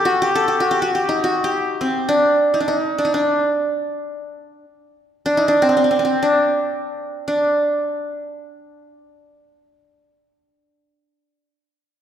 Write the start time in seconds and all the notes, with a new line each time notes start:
Already playing: G4 A4
0.05 F#4
0.22 G4
0.35 A4
0.48 G4
0.60 F#4
0.71 G4
0.82 F#4
0.95 G4
1.09 D#4
1.24 F#4
1.44 G4
1.81 C4
2.09 D4
2.54 D#4
2.60 D4
2.68 D#4
2.98 D4
3.05 D#4
3.14 D4
5.26 D4
5.37 D#4
5.48 D4
5.62 C4
5.69 C4
5.77 C4
5.84 C4
5.91 C4
5.99 C4
6.05 C4
6.23 D4
7.28 D4